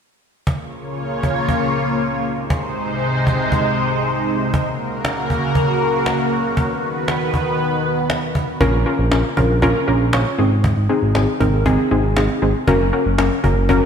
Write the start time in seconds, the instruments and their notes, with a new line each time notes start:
0.47 analog synth pad C#3 A#3 F4 C#5, cajon bass
0.59 cajon slap
0.72 cajon slap
0.85 cajon slap
0.98 cajon slap
1.10 cajon slap
1.23 cajon bass
1.36 cajon slap
1.49 cajon bass
1.61 cajon slap
1.74 cajon slap
1.86 cajon slap
1.99 cajon slap
2.12 cajon slap
2.25 analog synth pad C3 G#3 D#4 C5, cajon slap
2.37 cajon slap
2.50 cajon bass
2.63 cajon slap
2.76 cajon slap
2.88 cajon slap
3.01 cajon slap
3.14 cajon slap
3.27 cajon bass
3.39 cajon slap
3.52 cajon bass
3.65 cajon slap
3.77 cajon slap
3.90 cajon slap
4.03 cajon slap
4.16 cajon slap
4.28 cajon slap
4.41 cajon slap
4.54 analog synth pad C#3 A#3 F#4 A#4, cajon bass
4.66 cajon slap
4.79 cajon slap
4.92 cajon slap
5.05 cajon slap
5.17 cajon slap
5.30 cajon bass
5.43 cajon slap
5.55 cajon bass
5.68 cajon slap
5.81 cajon slap
5.93 cajon slap
6.06 cajon slap
6.19 cajon slap
6.32 cajon slap
6.44 cajon slap
6.57 analog synth pad D#3 B3 B4, cajon bass
6.70 cajon slap
6.82 cajon slap
6.95 cajon slap
7.08 cajon slap
7.21 cajon slap
7.34 cajon bass
7.46 cajon slap
7.59 cajon slap
7.72 cajon slap
7.84 cajon slap
7.97 cajon slap
8.10 cajon slap
8.23 cajon slap
8.35 cajon bass
8.48 cajon slap
8.61 analog synth bass A#1, synth pluck C#4 F4 A#4, cajon bass
8.73 analog synth bass A#1, cajon slap
8.86 synth pluck C#4 F4 A#4, cajon slap
8.99 analog synth bass A#1, cajon slap
9.11 analog synth bass A#1, synth pluck C#4 F4 A#4, cajon slap
9.24 cajon slap
9.37 analog synth bass A#1, synth pluck C#4 F4 A#4, cajon bass
9.50 analog synth bass A#1, cajon slap
9.62 analog synth bass A#1, synth pluck C#4 F4 A#4, cajon bass
9.75 cajon slap
9.87 analog synth bass A#1, synth pluck C#4 F4 A#4, cajon slap
10.00 analog synth bass A#1, cajon slap
10.13 analog synth bass A#1, synth pluck C#4 F4 C#5, cajon slap
10.26 cajon slap
10.38 analog synth bass G#1, synth pluck C4 D#4 G#4, cajon slap
10.51 cajon slap
10.64 cajon bass
10.77 analog synth bass G#1, cajon slap
10.89 synth pluck C4 D#4 G#4, cajon slap
11.02 analog synth bass G#1, cajon slap
11.15 analog synth bass G#1, synth pluck C4 D#4 G#4, cajon slap
11.28 cajon slap
11.40 analog synth bass G#1, synth pluck C4 D#4 A#4, cajon bass
11.53 analog synth bass G#1, cajon slap
11.66 analog synth bass G#1, synth pluck C4 D#4 G#4, cajon bass
11.78 cajon slap
11.91 analog synth bass G#1, synth pluck C4 D#4 G#4, cajon slap
12.04 analog synth bass G#1, cajon slap
12.17 analog synth bass G#1, synth pluck C4 D#4 G#4, cajon slap
12.29 cajon slap
12.42 analog synth bass G#1, synth pluck C4 D#4 G#4, cajon slap
12.55 cajon slap
12.67 analog synth bass F#1, synth pluck C#4 F#4 A#4, cajon bass
12.80 analog synth bass F#1, cajon slap
12.93 synth pluck C#4 F#4 A#4, cajon slap
13.06 analog synth bass F#1, cajon slap
13.18 analog synth bass F#1, synth pluck C#4 F#4 A#4, cajon slap
13.31 cajon slap
13.44 analog synth bass F#1, synth pluck C#4 F#4 A#4, cajon bass
13.56 analog synth bass F#1, cajon slap
13.69 analog synth bass F#1, synth pluck C#4 F#4 A#4, cajon bass
13.82 cajon slap